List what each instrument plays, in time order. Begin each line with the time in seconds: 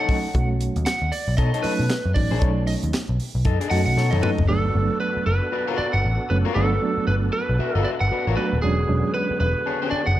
0.00 clean electric guitar D#4 A4 C#5, lead electric guitar F#5
0.08 reed electric piano F#3 A3 C#4 D#4, kick, open hi-hat
0.35 picked electric bass B1, reed electric piano F#3 A3 C#4 F#4, kick, closed hi-hat
0.61 closed hi-hat
0.76 picked electric bass D#2, closed hi-hat
0.86 lead electric guitar F#5, snare, clap, closed hi-hat
1.02 picked electric bass D#2
1.12 lead electric guitar D5, open hi-hat
1.28 picked electric bass B1
1.37 picked electric bass B2, clean electric guitar D#4 A4 C#5, lead electric guitar D#5, kick, closed hi-hat
1.54 clean electric guitar D#4 A4 C#5, closed hi-hat
1.62 reed electric piano F#3 A3 C#4 D#4, lead electric guitar B4, muted picked electric bass stroke, open hi-hat
1.80 picked electric bass B2
1.90 snare, clap, closed hi-hat
2.05 picked electric bass F#2
2.14 picked electric bass A1, reed electric piano F#3 A3 C#4 D#4, lead electric guitar D5, kick, open hi-hat
2.31 picked electric bass A#1, clean electric guitar D#4 A4 C#5
2.41 picked electric bass B1, reed electric piano F#3 A3 C#4 D#4, kick, closed hi-hat
2.67 lead electric guitar D#5, open hi-hat
2.83 picked electric bass D#2, closed hi-hat
2.93 snare, clap, closed hi-hat
3.09 picked electric bass B1
3.20 open hi-hat
3.35 picked electric bass B1
3.45 picked electric bass F#2, clean electric guitar D#4 A4 D#5, kick, closed hi-hat
3.60 clean electric guitar D#4 A4 D#5, closed hi-hat
3.71 picked electric bass F#2, reed electric piano F#3 A3 C#4 F#4, lead electric guitar F#5, open hi-hat
3.86 picked electric bass B1, lead electric guitar F#5
3.97 picked electric bass B2, clean electric guitar D#4 A4 C#5, snare
4.11 picked electric bass F#2, clean electric guitar D#4 A4 C#5, lead electric guitar D#5, high tom
4.23 reed electric piano F#3 A3 C#4 D#4, lead electric guitar B4, mid tom
4.38 picked electric bass F#1, floor tom
4.48 picked electric bass G1, reed electric piano F#3 A3 B3 D4, tonewheel organ B3 D4 F#4 A4, lead electric guitar A4
4.75 picked electric bass G1, reed electric piano F#3 A3 B3 D4
5.00 lead electric guitar B4
5.17 muted picked electric bass stroke
5.26 picked electric bass F#1, lead electric guitar B4
5.52 clean electric guitar F#4 B4 D5
5.67 clean electric guitar F#4 B4 D5
5.78 lead electric guitar D5, muted picked electric bass stroke
5.93 picked electric bass G1, lead electric guitar F#5
6.05 picked electric bass A1
6.30 picked electric bass F#1, reed electric piano F#3 A3 B3 C#4, lead electric guitar B4
6.45 clean electric guitar F#4 B4 D5
6.55 picked electric bass G1, reed electric piano F#3 A3 B3 D4, tonewheel organ F#4, lead electric guitar A4
6.82 reed electric piano F#3 A3 B3 D4
6.98 muted picked electric bass stroke
7.07 picked electric bass G1, lead electric guitar B4
7.33 lead electric guitar B4
7.49 picked electric bass B1
7.59 clean electric guitar F#4 B4 E5, muted picked electric bass stroke
7.75 picked electric bass G1, clean electric guitar F#4 B4 E5, lead electric guitar A4
7.84 lead electric guitar D5
8.01 picked electric bass G1, lead electric guitar F#5
8.11 clean electric guitar F#4 B4 D5, muted picked electric bass stroke
8.27 picked electric bass A1, clean electric guitar F#4 B4 D5
8.37 reed electric piano F#3 A3 B3 D4, lead electric guitar B4
8.53 picked electric bass D#1
8.62 picked electric bass E1, tonewheel organ D3 B3 F#4 G#4, reed electric piano F#3 G#3 C#4 D4, lead electric guitar G#4
8.89 picked electric bass E1, reed electric piano F#3 G#3 C#4 D4
9.14 lead electric guitar B4
9.31 muted picked electric bass stroke
9.40 picked electric bass E1, lead electric guitar B4
9.66 clean electric guitar D4 G#4 C#5
9.82 clean electric guitar D4 G#4 C#5
9.91 lead electric guitar D5, muted picked electric bass stroke
10.06 picked electric bass F#1, lead electric guitar F#5